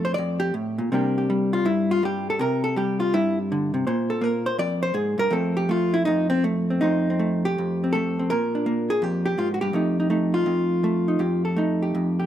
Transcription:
0.00 0.16 F2 medium
0.00 0.90 A3 medium
0.05 0.14 C5 medium
0.14 0.53 F2 medium
0.14 0.40 D5 loud
0.40 0.53 G4 loud
0.54 0.78 A2 medium
0.78 0.91 A#2 medium
0.92 1.67 C3 medium
0.92 1.29 G3 soft
0.92 2.42 A#3 soft
0.92 1.65 D4 soft
0.92 1.17 G4 soft
1.18 1.53 G4 soft
1.30 2.02 G3 medium
1.53 1.66 F4 medium
1.65 2.38 G2 medium
1.65 1.91 E4 medium
1.91 2.04 F4 medium
2.03 2.39 G3 medium
2.03 2.29 G4 medium
2.30 2.40 A4 medium
2.39 3.13 C3 medium
2.39 2.63 A#4 loud
2.64 2.77 A4 medium
2.76 3.84 G3 medium
2.76 3.00 G4 medium
3.00 3.13 F4 medium
3.14 3.85 G2 medium
3.14 3.38 E4 loud
3.52 3.73 D3 medium
3.74 3.86 C3 medium
3.87 4.59 A#2 medium
3.87 4.46 C5 soft
4.10 4.23 A4 medium
4.21 5.30 A#3 medium
4.21 4.47 A#4 medium
4.46 4.59 C5 medium
4.58 4.93 F2 medium
4.58 4.82 D5 loud
4.83 4.95 C5 loud
4.94 5.17 G#2 medium
4.94 5.19 G#4 medium
5.18 5.30 G2 medium
5.18 5.32 A#4 loud
5.30 6.05 F2 medium
5.30 5.68 A3 medium
5.30 6.29 C4 medium
5.30 5.57 A4 medium
5.57 5.69 G4 medium
5.69 6.43 A3 medium
5.69 5.94 F4 medium
5.94 6.05 E4 medium
6.05 6.81 F2 medium
6.05 6.29 D#4 medium
6.30 6.43 C4 medium
6.44 6.80 A3 medium
6.70 6.81 C4 soft
6.81 7.57 F2 medium
6.81 7.18 A3 soft
6.81 7.10 C4 soft
6.81 7.43 D#4 medium
7.10 7.83 C4 soft
7.19 7.94 A3 medium
7.45 8.31 G4 medium
7.58 8.31 F2 medium
7.84 8.19 C4 soft
7.93 8.30 A3 medium
7.93 8.30 A4 medium
8.19 8.33 C4 soft
8.30 9.04 A#2 medium
8.30 9.27 A#4 loud
8.55 9.75 D4 soft
8.66 9.74 A#3 medium
8.90 9.03 G#4 medium
9.02 9.37 F2 medium
9.02 9.24 G4 medium
9.26 9.54 G4 medium
9.38 9.62 G#2 medium
9.38 9.48 F4 medium
9.54 9.61 F#4 medium
9.61 9.73 G2 medium
9.61 10.48 G4 medium
9.73 10.46 F2 medium
9.73 10.09 A3 soft
9.73 9.99 D#4 soft
10.00 10.10 D#4 soft
10.10 10.83 A3 medium
10.10 11.07 D#4 soft
10.34 11.44 F4 medium
10.46 11.18 F2 medium
10.84 11.20 A3 medium
11.08 11.20 D#4 soft
11.19 11.93 F2 medium
11.19 11.81 G4 soft
11.45 12.19 A4 medium
11.56 12.26 A3 medium
11.56 12.26 D#4 medium
11.82 12.18 G4 medium
11.95 12.26 F2 medium
12.20 12.26 G4 soft

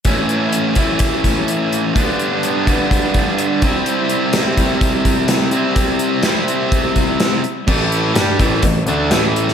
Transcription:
0.05 0.75 A2 medium
0.05 0.75 E3 medium
0.05 0.78 A3 medium
0.05 0.76 C#4 medium
0.05 0.75 E4 medium
0.05 kick medium
0.05 closed hi-hat medium
0.29 closed hi-hat soft
0.53 closed hi-hat medium
0.75 1.94 A2 medium
0.75 1.95 E3 medium
0.75 1.95 A3 medium
0.75 1.94 C#4 medium
0.75 1.94 E4 medium
0.75 kick medium
0.75 closed hi-hat medium
0.99 kick medium
0.99 closed hi-hat medium
1.24 kick medium
1.24 closed hi-hat medium
1.48 closed hi-hat medium
1.73 closed hi-hat medium
1.94 2.65 G2 medium
1.94 2.65 D3 medium
1.94 2.68 G3 medium
1.94 2.66 B3 medium
1.94 2.66 D4 medium
1.94 kick medium
1.94 closed hi-hat medium
2.20 closed hi-hat medium
2.43 closed hi-hat medium
2.67 3.62 G2 medium
2.67 3.62 D3 medium
2.67 3.63 G3 medium
2.67 3.61 B3 medium
2.67 3.61 D4 medium
2.67 kick medium
2.67 closed hi-hat medium
2.91 kick medium
2.91 closed hi-hat medium
3.14 kick medium
3.14 closed hi-hat soft
3.38 closed hi-hat medium
3.62 4.34 C3 medium
3.62 4.35 G3 medium
3.62 4.36 C4 medium
3.62 4.36 E4 medium
3.62 kick medium
3.62 closed hi-hat soft
3.86 closed hi-hat medium
4.10 closed hi-hat medium
4.33 5.51 C3 medium
4.33 5.52 G3 medium
4.33 5.53 C4 medium
4.33 5.54 E4 medium
4.33 snare loud
4.33 closed hi-hat medium
4.57 kick medium
4.57 closed hi-hat medium
4.81 kick loud
4.81 closed hi-hat medium
5.05 kick medium
5.05 closed hi-hat medium
5.28 snare loud
5.28 closed hi-hat medium
5.51 6.22 C3 medium
5.51 6.23 G3 medium
5.51 6.23 C4 medium
5.51 6.24 E4 medium
5.51 closed hi-hat medium
5.76 kick medium
5.76 closed hi-hat medium
5.99 closed hi-hat medium
6.23 7.42 C3 medium
6.23 7.42 G3 medium
6.23 7.42 C4 medium
6.23 7.42 E4 medium
6.23 snare medium
6.23 closed hi-hat medium
6.48 closed hi-hat medium
6.72 kick loud
6.72 closed hi-hat medium
6.96 kick medium
6.96 closed hi-hat medium
7.20 snare loud
7.20 closed hi-hat medium
7.44 closed hi-hat soft
7.67 8.12 A1 medium
7.67 8.14 A2 medium
7.67 8.14 E3 medium
7.67 8.14 A3 medium
7.67 kick loud
7.67 crash medium
7.92 closed hi-hat medium
8.14 8.38 G2 medium
8.14 8.38 G3 loud
8.14 8.38 D4 medium
8.14 8.38 G4 loud
8.14 snare loud
8.14 closed hi-hat medium
8.39 8.62 A1 medium
8.39 8.62 A2 medium
8.39 8.62 E3 medium
8.39 8.63 A3 medium
8.39 kick loud
8.39 closed hi-hat medium
8.63 8.85 A1 medium
8.63 8.82 A2 medium
8.63 8.82 E3 medium
8.63 kick medium
8.63 closed hi-hat medium
8.86 9.08 D2 medium
8.86 9.10 D3 medium
8.86 9.10 A3 medium
8.86 9.10 D4 loud
8.86 closed hi-hat medium
9.10 9.54 A1 medium
9.10 9.54 A2 medium
9.10 9.54 E3 medium
9.10 9.54 A3 loud
9.10 snare loud
9.10 closed hi-hat medium
9.36 closed hi-hat medium
9.48 snare soft

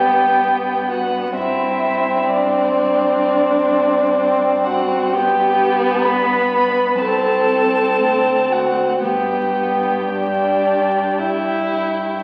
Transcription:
0.00 1.34 G2 soft
0.00 1.33 B3 soft
0.00 0.90 G4 medium
0.00 0.91 G5 medium
0.89 1.40 F#4 soft
0.89 1.35 F#5 medium
1.36 6.96 G2 medium
1.36 5.17 C4 soft
1.36 2.34 E4 medium
1.36 2.30 E5 medium
2.31 4.66 D4 medium
2.31 4.66 D5 medium
4.65 5.15 F#4 medium
4.65 5.11 F#5 medium
5.11 7.01 B3 medium
5.11 6.07 G4 medium
5.11 6.04 G5 medium
6.02 7.02 B4 medium
6.02 6.99 B5 medium
7.00 8.02 C2 medium
7.00 9.01 C4 medium
7.00 8.51 A4 medium
7.00 8.54 A5 medium
8.00 9.05 D2 soft
8.51 9.05 F#4 soft
8.51 9.03 F#5 medium
9.03 12.23 G2 soft
9.03 9.98 B3 soft
9.03 12.23 G4 medium
9.03 12.19 G5 medium
10.10 11.20 D4 soft
11.19 12.23 E4 medium

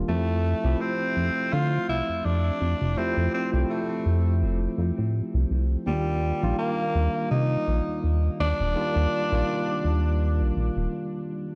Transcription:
0.00 0.11 D#3 medium
0.00 0.11 G3 medium
0.00 0.10 A#3 medium
0.00 0.10 D4 medium
0.00 0.10 F4 medium
0.08 0.54 F2 loud
0.08 0.59 F3 medium
0.08 0.60 A3 medium
0.08 0.82 A3 loud
0.08 0.60 C4 medium
0.08 0.60 E4 medium
0.08 0.60 G4 medium
0.64 0.75 C2 loud
0.64 0.78 F3 medium
0.64 0.78 A3 medium
0.64 0.78 C4 medium
0.64 0.78 E4 medium
0.64 0.78 G4 medium
0.80 1.54 C4 loud
1.17 1.30 F2 medium
1.53 1.79 D3 medium
1.53 1.88 F4 loud
1.89 2.03 C2 medium
1.89 2.27 E4 loud
2.09 2.22 F2 soft
2.25 2.51 F2 medium
2.25 2.99 D4 loud
2.61 2.75 F2 medium
2.81 2.97 F1 loud
2.97 3.13 F2 soft
2.97 3.48 F3 medium
2.97 3.49 A3 medium
2.97 3.49 C4 medium
2.97 3.33 C4 loud
2.97 3.49 E4 medium
2.97 3.49 G4 loud
3.17 3.28 F2 loud
3.34 3.50 C4 medium
3.52 3.65 C2 medium
3.52 5.82 F3 medium
3.52 5.82 A3 medium
3.52 5.83 C4 medium
3.52 5.83 E4 medium
3.52 5.84 G4 medium
3.70 4.38 A3 medium
4.06 4.44 F2 medium
4.42 4.68 F1 loud
4.78 4.92 F2 loud
4.98 5.22 A2 medium
5.34 5.45 C2 loud
5.51 5.76 C2 medium
5.86 6.32 D#2 loud
5.86 6.38 D#3 medium
5.86 6.38 G3 medium
5.86 6.55 G3 medium
5.86 6.38 A#3 medium
5.86 6.38 D4 medium
5.86 6.38 F4 medium
6.42 6.54 A#1 medium
6.42 6.56 D#3 medium
6.42 6.56 G3 medium
6.42 6.56 A#3 medium
6.42 6.56 D4 medium
6.42 6.57 F4 medium
6.58 7.27 A#3 loud
6.95 7.09 D#2 medium
7.31 7.57 C3 medium
7.31 7.99 D#4 loud
7.68 7.81 A#1 medium
7.88 8.00 D#2 soft
8.04 8.29 D#2 medium
8.40 8.53 D#2 medium
8.40 10.89 D4 loud
8.60 8.76 D#1 loud
8.75 8.92 D#2 soft
8.75 9.27 D#3 medium
8.75 9.27 G3 medium
8.75 9.27 A#3 medium
8.75 9.27 D4 medium
8.75 9.27 F4 loud
8.96 9.07 D#2 medium
9.30 9.43 A#1 loud
9.30 10.92 D#3 medium
9.30 10.92 G3 medium
9.30 10.93 A#3 medium
9.30 10.93 D4 medium
9.30 10.94 F4 medium
9.84 10.42 D#2 medium
10.40 10.51 A#1 medium
10.56 10.70 A#1 medium
10.76 10.88 D#1 medium

